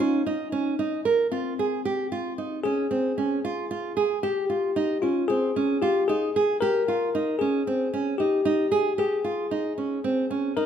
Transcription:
0.00 C#4 D#4
0.26 D#4
0.52 C#4
0.79 D#4
1.05 A#4
1.32 C4 F4
1.59 G#4
1.85 G4
2.12 F4
2.38 D#4
2.64 C#4 G#4
2.91 C4
3.18 C#4
3.45 F4
3.71 F4
3.97 G#4
4.23 G4
4.50 F4
4.76 D#4
5.02 C#4 F4
5.28 C4 G#4
5.56 C#4
5.82 F4 G4
6.08 D#4 G#4
6.36 G#4
6.61 G4 A#4
6.88 F4
7.15 D#4
7.39 C#4 G#4
7.67 C4
7.94 C#4
8.18 D#4 G4
8.45 D#4
8.72 G#4
8.98 G4 G#4
9.24 F4
9.51 D#4
9.78 C#4
10.04 C4
10.31 C#4
10.57 D#4 A#4

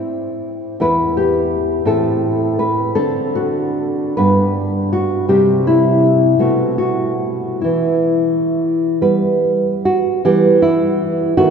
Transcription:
Already playing: C4 E4
0.80 E2 B3 E4 B4
1.17 G4
1.85 A2 C4 E4 A4
2.59 B4
2.95 D3 C4 D4 A4
3.35 F#4
4.17 G2 B3 D4 B4
4.93 F#4
5.28 C3 G3 C4 G4
5.67 E4
6.39 B2 A3 C4 F#4
6.78 F#4
7.61 E3 E4
9.01 G3 B3 B4
9.85 F#4
10.25 E3 G3 B3 G4
10.62 E4
11.37 D#3 A3 B3 F#4

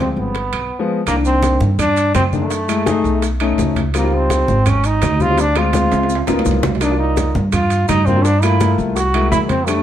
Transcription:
Already playing: D2 F3 G#3 C4
0.00 C4
0.16 G1 B3, high bongo, high conga
0.35 high bongo, high conga, high timbale
0.53 B1, high bongo, high conga, high timbale, claves
0.79 F3 G#3 B3
1.06 C2 D#3 A#3 D4, high bongo, high conga, high timbale, claves, maracas
1.16 D#3 A#3 D4
1.25 C4, high conga, maracas
1.43 high bongo, high conga, high timbale, low timbale, maracas
1.60 G2, high conga, maracas
1.79 D4, high bongo, high conga, low conga, high timbale, claves, maracas
1.97 high conga, high timbale, maracas
2.15 F#2 C4, high bongo, low bongo, high conga, high timbale, low timbale, claves, maracas
2.33 D#3 A3 A#3 D4, high conga, maracas
2.41 D#3 A#3 D4
2.50 high bongo, high timbale, maracas
2.68 G#3 A3 E4, high bongo, high conga, high timbale, claves, maracas
2.86 A3 D#4 G#4, high bongo, high conga, high timbale, low timbale, maracas
3.04 B1, high bongo, high conga, maracas
3.22 high bongo, high conga, high timbale, maracas
3.40 A3 C#4 D#4, high bongo, high conga, high timbale, claves
3.58 C#2, high bongo, low bongo, high conga, low timbale, maracas
3.76 high conga, high timbale, maracas
3.94 G3 A#3 C4 D#4 F4, high bongo, high timbale, claves, maracas
4.03 G3 C4 D#4 F4
4.12 C4, high conga
4.30 high bongo, high conga, high timbale, low timbale, maracas
4.48 G#1, high conga, maracas
4.66 C#4, high bongo, high conga, low conga, high timbale, claves, maracas
4.84 D#4, high conga, high timbale, maracas
5.02 D2, high bongo, low bongo, high conga, high timbale, low timbale, claves, maracas
5.20 G3 C4 D#4 F4, high conga, maracas
5.29 G3 C4 D#4 F4
5.38 D4, high bongo, high conga, high timbale, maracas
5.56 G#3 C4 F4, high bongo, high conga, high timbale, claves
5.73 G#3 C4 F4, low bongo, high conga, high timbale, low timbale, maracas
5.92 C#2, low bongo, high conga, high timbale, maracas
6.03 high timbale
6.10 high conga, maracas
6.15 high timbale
6.27 C#2 A#3 B3 D#4 F4, low bongo, high conga, high timbale, claves, maracas
6.39 low timbale
6.45 C2, low bongo, high conga, maracas
6.51 low timbale
6.63 low bongo, high conga, low timbale, maracas
6.75 low timbale
6.81 A#3 D4 D#4, high bongo, high conga, high timbale, claves, maracas
6.91 A#3 F4 D5
6.99 D#4, high conga
7.17 high bongo, high conga, high timbale, low timbale, maracas
7.35 G2, high conga, maracas
7.52 F4, high bongo, high conga, low conga, high timbale, claves, maracas
7.70 high conga, high timbale, maracas
7.89 G2 D#4, high bongo, low bongo, high conga, high timbale, low timbale, claves, maracas
8.06 A#3 C4 D4 F4, high conga, maracas
8.15 A#3 D4 F4
8.24 D4, high bongo, high conga, high timbale, maracas
8.42 A3 A#3 E4 F4, high bongo, high conga, high timbale, claves, maracas
8.60 A3 A#3 F4, high bongo, high conga, high timbale, low timbale, maracas
8.78 C2, high bongo, maracas
8.96 F#4, high bongo, high conga, high timbale, maracas
9.14 G#3 A#3 E4, high bongo, high conga, high timbale, claves
9.31 F2 E4, high bongo, low bongo, high conga, low timbale, maracas
9.49 C4, high conga, high timbale, maracas
9.66 G3 A3 D4, high bongo, high conga, high timbale, claves, maracas
9.76 G3 A3 D4

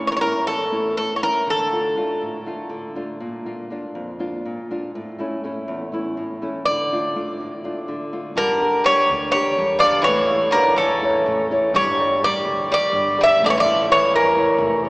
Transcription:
Already playing: A2 A3 C#4 E4
0.07 C#5
0.12 A#4
0.17 C#5
0.21 A3 C#4 E4 A#4
0.46 E2 A4
0.71 A3 C#4 E4
0.97 A2 A4
1.16 C#5
1.22 A3 C#4 E4 A#4
1.47 D3 A4
1.72 A3 D4 F4
1.97 A3 D4 F4
2.21 A2
2.46 A3 D4 F4
2.69 D3
2.95 A3 D4 F4
3.20 A#2
3.46 A#3 D4 F4
3.70 A#3 D4 F4
3.95 F2
4.19 A#3 D4 F4
4.45 A#2
4.70 A#3 D4 F4
4.95 A2
5.19 A3 C#4 E4
5.44 A3 C#4 E4
5.68 E2
5.92 A3 C#4 E4
6.17 A2
6.42 A3 C#4 E4
6.65 D3 D5
6.92 A3 D4 F4
7.15 A3 D4 F4
7.40 A2
7.64 A3 D4 F4
7.88 D3
8.13 A3 D4 F4
8.35 G1 D3 G3 A#4
8.61 D4 G4 A#4
8.84 G3 D4 G4 A#4 C#5
9.09 D2 D3
9.31 G3 D4 G4 A#4 C#5
9.58 E2 G3
9.79 F3 D5
9.83 D4 G4 A#4
10.02 E3 C#5
10.06 A1 A3
10.31 E4 A4 C#5
10.51 D3 E4 A#4
10.55 A4 C#5
10.76 E2 C#3 E3 A4
11.02 E4 A4 C#5
11.26 A1 A3
11.51 E4 A4 C#5
11.74 G1 G3 C#5
11.99 G4 A#4 D5
12.22 G3 G4 A#4 D5
12.45 D2 D3
12.71 G3 G4 A#4 D5
12.93 G1 G3
13.18 G3 G4 A#4 D5
13.24 E5
13.40 A1 A3
13.44 A3 D5
13.48 E3 C#5
13.58 F3 D5
13.66 E4 A4 C#5
13.89 E3 E4 A4 C#5
14.11 E2 E3
14.15 C#3 A#4
14.36 E4 C#5
14.58 F1 A3
14.84 E4 A4 C#5

